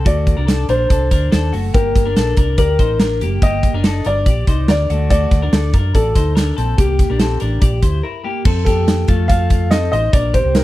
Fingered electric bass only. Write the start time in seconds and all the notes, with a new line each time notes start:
0.06 D2
0.37 C2
0.68 A#1
0.90 C2
1.11 D2
1.33 D#2
1.54 F#1
1.74 G1
1.96 G1
2.17 A#1
2.38 C2
2.58 D2
2.79 A1
3.21 F#1
3.43 G1
3.73 F#1
4.06 G1
4.27 A#1
4.47 C2
4.69 D2
4.90 D2
5.32 D2
5.52 D2
5.74 F#2
5.95 A1
6.16 D2
6.58 A#1
6.78 C2
7.10 A#1
7.42 A1
7.62 A#1
7.83 D2
8.45 F2
9.09 F2
9.92 A1
10.13 A#1
10.44 C2